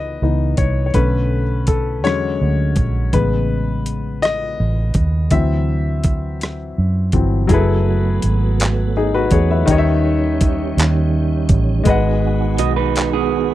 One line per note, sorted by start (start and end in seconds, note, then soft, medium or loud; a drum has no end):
0.00 0.18 C#2 medium
0.00 0.21 E3 soft
0.00 0.21 B3 soft
0.00 0.22 D#4 soft
0.00 0.94 B4 medium
0.00 0.54 D#5 medium
0.22 0.55 C#2 medium
0.22 0.55 E3 soft
0.22 0.55 B3 soft
0.22 0.55 D#4 soft
0.57 0.91 C2 medium
0.57 0.85 C#5 medium
0.57 kick medium
0.57 closed hi-hat medium
0.86 0.94 C#5 medium
0.94 2.04 B1 loud
0.94 1.43 D3 soft
0.94 1.43 A3 soft
0.94 1.43 C#4 medium
0.94 1.69 B4 medium
0.94 kick medium
0.94 closed hi-hat medium
1.67 2.01 A4 medium
1.67 kick medium
1.67 closed hi-hat medium
2.04 2.37 E2 medium
2.04 3.09 D3 medium
2.04 3.09 F#3 medium
2.04 3.09 G#3 soft
2.04 3.09 C#4 medium
2.04 2.82 C#5 medium
2.04 cross-stick medium
2.04 closed hi-hat medium
2.41 2.74 D2 medium
2.76 3.10 A#1 medium
2.76 kick medium
2.76 closed hi-hat medium
3.13 4.55 A1 medium
3.13 5.27 C#3 soft
3.13 5.27 G#3 soft
3.13 5.28 B3 medium
3.13 4.26 B4 medium
3.13 kick medium
3.13 closed hi-hat medium
3.86 closed hi-hat medium
4.22 5.34 D#5 loud
4.22 cross-stick medium
4.22 closed hi-hat medium
4.60 4.92 A1 loud
4.94 5.28 D#2 medium
4.94 kick medium
4.94 closed hi-hat medium
5.31 6.73 D2 loud
5.31 6.36 E3 soft
5.31 6.37 F#3 soft
5.31 6.37 C4 soft
5.31 7.09 E5 medium
5.31 kick medium
5.31 closed hi-hat medium
6.04 kick medium
6.04 closed hi-hat medium
6.41 cross-stick medium
6.41 closed hi-hat medium
6.78 7.10 F#2 medium
7.12 7.46 G1 medium
7.12 7.46 E3 soft
7.12 7.46 F#3 soft
7.12 7.46 C4 soft
7.12 kick medium
7.12 closed hi-hat medium
7.47 8.18 F#1 loud
7.47 9.62 F#3 medium
7.47 9.66 F#3 medium
7.47 9.66 A3 medium
7.47 9.66 B3 medium
7.47 8.92 E4 medium
7.47 8.92 G#4 medium
7.47 kick medium
7.47 closed hi-hat medium
7.52 8.93 A4 medium
7.52 8.94 B4 medium
8.22 9.28 G#1 loud
8.22 closed hi-hat medium
8.60 clap loud
8.60 closed hi-hat medium
8.97 9.13 D#4 medium
8.97 9.13 G#4 medium
9.14 9.31 F#4 medium
9.14 9.31 B4 medium
9.31 9.64 E2 medium
9.31 9.49 G#4 medium
9.31 9.49 C#5 medium
9.31 kick medium
9.31 closed hi-hat medium
9.51 9.85 B4 medium
9.51 9.77 E5 medium
9.66 10.73 D#2 loud
9.66 11.81 D#3 medium
9.66 13.54 D#3 medium
9.66 11.83 G3 medium
9.66 11.83 C#4 medium
9.66 11.82 D#4 medium
9.66 11.82 G4 medium
9.66 kick medium
9.66 closed hi-hat medium
9.71 11.83 C#5 medium
9.71 9.76 D#5 medium
9.78 11.87 E5 medium
10.41 kick loud
10.41 closed hi-hat medium
10.77 11.51 D#2 loud
10.77 clap loud
10.77 closed hi-hat medium
11.49 11.82 A1 medium
11.49 kick loud
11.49 closed hi-hat medium
11.84 12.59 G#1 loud
11.84 13.54 G#3 medium
11.84 13.54 B3 medium
11.84 13.54 F#4 medium
11.84 13.54 G#4 medium
11.84 13.54 B4 medium
11.84 kick loud
11.84 closed hi-hat medium
11.89 13.54 D#5 medium
11.89 13.54 F#5 medium
12.58 13.54 B1 medium
12.58 12.76 F#4 medium
12.58 12.76 D#5 medium
12.58 closed hi-hat medium
12.76 13.11 D#4 medium
12.76 13.11 B4 loud
12.96 clap medium
12.96 closed hi-hat medium
13.13 13.54 B3 medium
13.13 13.54 G#4 medium